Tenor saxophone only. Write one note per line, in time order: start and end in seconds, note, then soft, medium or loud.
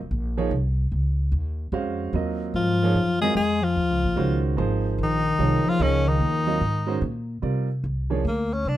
2.56 3.19 F4 medium
3.22 3.35 G#4 medium
3.37 3.65 G#4 medium
3.64 4.44 F4 medium
5.03 5.71 D#4 loud
5.69 5.84 F4 loud
5.82 6.10 C#4 medium
6.08 7.03 D#4 medium
8.28 8.55 A#3 medium
8.54 8.70 C#4 medium
8.68 8.77 D4 medium